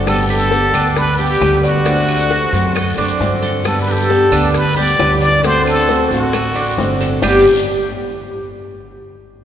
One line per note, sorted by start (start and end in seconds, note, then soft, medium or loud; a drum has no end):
0.00 0.68 G1 loud
0.00 0.29 A4 medium
0.06 0.50 D3 medium
0.06 0.51 G3 medium
0.06 0.51 B3 medium
0.06 0.51 G4 medium
0.06 0.28 A4 medium
0.06 high bongo medium
0.06 long guiro medium
0.06 claves medium
0.06 maracas medium
0.30 0.73 G4 medium
0.30 0.99 A4 loud
0.30 maracas soft
0.51 0.73 D3 soft
0.51 0.74 G3 soft
0.51 0.73 B3 medium
0.51 0.72 G4 soft
0.51 high bongo medium
0.51 short guiro medium
0.51 maracas soft
0.73 1.37 D2 medium
0.73 0.96 G3 medium
0.73 0.96 B3 medium
0.73 1.17 D4 medium
0.73 0.95 G4 medium
0.73 high bongo soft
0.73 short guiro medium
0.73 claves medium
0.73 maracas medium
0.97 1.20 B4 loud
0.97 muted steel-string acoustic guitar stroke medium
0.97 high bongo medium
0.97 long guiro medium
0.97 maracas medium
1.19 1.40 G3 medium
1.19 1.41 B3 medium
1.19 1.62 G4 medium
1.19 1.41 G4 medium
1.19 1.67 G4 medium
1.19 high bongo soft
1.19 maracas soft
1.40 2.47 D2 medium
1.40 1.84 D3 medium
1.40 1.85 G3 soft
1.40 1.86 B3 medium
1.40 1.86 G4 medium
1.40 high bongo soft
1.40 low bongo medium
1.40 short guiro medium
1.40 claves medium
1.40 maracas soft
1.63 3.21 F#4 loud
1.63 1.85 D5 medium
1.63 short guiro medium
1.63 maracas medium
1.85 2.29 D3 medium
1.85 2.30 A3 medium
1.85 2.30 C4 medium
1.85 2.29 D4 medium
1.85 2.31 F#4 medium
1.85 high bongo medium
1.85 long guiro medium
1.85 maracas medium
2.09 claves medium
2.09 maracas soft
2.30 2.52 D3 soft
2.30 2.52 A3 soft
2.30 2.52 C4 soft
2.30 2.74 F#4 medium
2.30 2.51 F#4 soft
2.30 high bongo medium
2.30 short guiro medium
2.30 maracas soft
2.52 2.94 F#2 loud
2.52 2.74 A3 medium
2.52 2.74 C4 medium
2.52 2.74 F#4 medium
2.52 high bongo soft
2.52 short guiro medium
2.52 maracas medium
2.74 2.97 A4 medium
2.74 muted steel-string acoustic guitar stroke soft
2.74 high bongo medium
2.74 long guiro medium
2.74 claves medium
2.74 maracas medium
2.96 3.19 F#2 medium
2.96 3.19 A3 medium
2.96 3.19 C4 medium
2.96 3.41 D4 medium
2.96 3.19 F#4 medium
2.96 high bongo soft
2.96 maracas soft
3.19 4.26 G2 medium
3.19 3.63 D3 medium
3.19 3.64 A3 medium
3.19 3.64 C4 medium
3.19 3.65 F#4 medium
3.19 high bongo soft
3.19 low bongo medium
3.19 short guiro medium
3.19 maracas soft
3.43 3.64 A4 medium
3.43 short guiro medium
3.43 maracas medium
3.64 4.08 D3 medium
3.64 4.09 G3 medium
3.64 4.09 B3 medium
3.64 4.09 G4 medium
3.64 3.81 A4 medium
3.64 high bongo medium
3.64 long guiro medium
3.64 claves medium
3.64 maracas medium
3.82 3.93 B4 medium
3.87 4.31 G4 medium
3.87 maracas soft
3.91 4.58 A4 medium
4.09 4.31 D3 medium
4.09 4.31 G3 soft
4.09 4.32 B3 medium
4.09 4.31 G4 soft
4.09 high bongo medium
4.09 short guiro medium
4.09 maracas soft
4.31 4.95 D2 loud
4.31 4.53 G3 medium
4.31 4.53 B3 medium
4.31 4.76 D4 medium
4.31 4.54 G4 medium
4.31 high bongo soft
4.31 short guiro medium
4.31 claves medium
4.31 maracas medium
4.54 4.80 B4 loud
4.54 muted steel-string acoustic guitar stroke medium
4.54 high bongo medium
4.54 long guiro medium
4.54 maracas medium
4.76 4.98 G3 medium
4.76 4.99 B3 medium
4.76 4.98 G4 medium
4.76 5.20 G4 medium
4.76 5.22 D5 loud
4.76 high bongo soft
4.76 maracas soft
4.98 6.05 D2 medium
4.98 5.42 D3 medium
4.98 5.43 G3 medium
4.98 5.44 B3 medium
4.98 5.44 G4 medium
4.98 high bongo soft
4.98 low bongo medium
4.98 short guiro medium
4.98 claves medium
4.98 maracas soft
5.21 5.43 D5 medium
5.21 5.47 D5 loud
5.21 short guiro medium
5.21 maracas medium
5.43 5.88 D3 medium
5.43 5.88 A3 medium
5.43 5.88 C4 medium
5.43 5.87 D4 medium
5.43 5.88 F#4 medium
5.43 5.67 C5 loud
5.43 high bongo medium
5.43 long guiro medium
5.43 maracas medium
5.67 6.09 A4 loud
5.67 claves medium
5.67 maracas soft
5.88 6.10 D3 soft
5.88 6.11 A3 soft
5.88 6.11 C4 soft
5.88 6.32 F#4 medium
5.88 6.10 F#4 medium
5.88 high bongo medium
5.88 short guiro medium
5.88 maracas soft
6.10 6.74 A1 loud
6.10 6.33 A3 medium
6.10 6.33 C4 medium
6.10 6.33 F#4 medium
6.10 6.98 F#4 medium
6.10 high bongo soft
6.10 short guiro medium
6.10 maracas medium
6.33 6.55 A4 medium
6.33 muted steel-string acoustic guitar stroke medium
6.33 high bongo medium
6.33 long guiro medium
6.33 claves medium
6.33 maracas medium
6.55 6.78 A3 soft
6.55 6.78 C4 medium
6.55 6.99 D4 medium
6.55 6.78 F#4 medium
6.55 high bongo soft
6.55 maracas soft
6.78 7.17 G1 medium
6.78 7.22 D3 medium
6.78 7.23 A3 soft
6.78 7.23 C4 medium
6.78 7.23 F#4 medium
6.78 high bongo soft
6.78 low bongo medium
6.78 short guiro medium
6.78 maracas soft
7.01 7.22 A4 medium
7.01 short guiro medium
7.01 maracas medium
7.22 7.43 G1 medium
7.22 7.41 G2 medium
7.22 7.42 A2 medium
7.22 7.42 D3 medium
7.22 7.44 G3 medium
7.22 7.42 G3 medium
7.22 7.42 B3 medium
7.22 7.44 D4 medium
7.22 7.44 G4 medium
7.22 7.45 G4 medium
7.22 7.42 G4 medium
7.22 low bongo medium
7.22 long guiro loud
7.22 claves medium
7.22 maracas loud